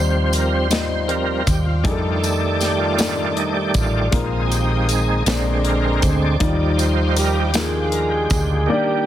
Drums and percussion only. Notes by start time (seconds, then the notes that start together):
0.33 closed hi-hat, tambourine
0.71 snare, closed hi-hat, tambourine
1.09 closed hi-hat
1.47 kick, closed hi-hat, tambourine
1.85 kick, closed hi-hat
2.23 closed hi-hat, tambourine
2.61 snare, closed hi-hat, tambourine
2.98 snare, closed hi-hat, tambourine
3.37 closed hi-hat
3.74 kick, closed hi-hat, tambourine
4.12 kick, closed hi-hat
4.52 closed hi-hat, tambourine
4.89 closed hi-hat, tambourine
5.26 snare, closed hi-hat, tambourine
5.65 closed hi-hat
6.02 kick, closed hi-hat, tambourine
6.40 kick, closed hi-hat
6.79 closed hi-hat, tambourine
7.16 closed hi-hat, tambourine
7.54 snare, closed hi-hat, tambourine
7.92 closed hi-hat
8.30 kick, closed hi-hat, tambourine